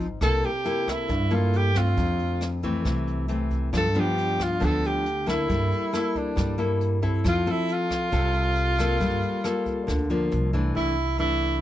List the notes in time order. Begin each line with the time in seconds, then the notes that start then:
Already playing: G#1 G#2
0.00 closed hi-hat
0.21 C2 C3 A#3 E4 A4, kick, cross-stick, closed hi-hat
0.44 G4, closed hi-hat
0.65 A#3 E4 A4, closed hi-hat
0.88 E4, kick, cross-stick, closed hi-hat
1.08 G2, kick, closed hi-hat
1.31 A#3 E4 F4 A4, closed hi-hat
1.53 G4, closed hi-hat
1.75 A3 C4 F4, kick, cross-stick, closed hi-hat
1.97 F2, kick, closed hi-hat
2.19 closed hi-hat
2.41 cross-stick, closed hi-hat
2.63 E3 A3 C4, kick, closed hi-hat
2.85 C2 C3, kick, cross-stick, closed hi-hat
3.07 closed hi-hat
3.28 E3 A3 C4, closed hi-hat
3.51 kick, closed hi-hat
3.73 G2 F3 B3 D4, kick, cross-stick, closed hi-hat
3.77 A4
3.95 F3 B3 D4, closed hi-hat
4.00 G4
4.18 closed hi-hat
4.39 F4, kick, cross-stick, closed hi-hat
4.60 D2 D3 F3 B3 D4, kick, closed hi-hat
4.65 A4
4.84 G4, closed hi-hat
5.06 closed hi-hat
5.26 A#3 E4 A4, kick, cross-stick, closed hi-hat
5.48 G2 G3, kick, closed hi-hat
5.72 closed hi-hat
5.93 A#3 E4 A4, cross-stick, closed hi-hat
6.15 D4, kick, closed hi-hat
6.36 G2 G3, kick, cross-stick, closed hi-hat
6.58 A#3 E4 A4, closed hi-hat
6.81 closed hi-hat
7.02 C4 E4 A4, kick, closed hi-hat
7.24 F2 F3, kick, cross-stick, closed hi-hat
7.28 F4
7.46 C4 A4, closed hi-hat
7.51 E4
7.69 F4, closed hi-hat
7.91 kick, cross-stick, closed hi-hat
8.12 C2 C3 C4 A4, kick, closed hi-hat
8.35 closed hi-hat
8.56 closed hi-hat
8.78 A#3 F4 A4, kick, cross-stick, closed hi-hat
9.00 G2 G3, kick, closed hi-hat
9.22 closed hi-hat
9.44 A#3 F4 A4, cross-stick, closed hi-hat
9.66 kick, closed hi-hat
9.87 D2 D3, kick, cross-stick, closed hi-hat
10.10 F3 A#3 D4, closed hi-hat
10.31 C2, closed hi-hat
10.53 E3 A3 D4, kick, closed hi-hat
10.75 C3 E4
11.18 E3 A3 D4 E4